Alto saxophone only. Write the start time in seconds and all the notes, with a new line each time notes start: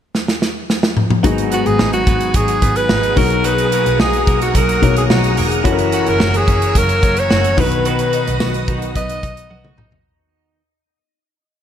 1.54 F#4
1.67 G#4
1.93 F#4
2.36 G#4
2.77 B4
3.18 A#4
3.46 B4
4.01 G#4
4.43 F#4
4.56 A#4
4.98 G#4
5.11 F#4
5.94 F#4
6.09 A#4
6.37 G#4
6.78 A#4
7.19 C#5
7.60 B4
7.88 B4
8.97 D#5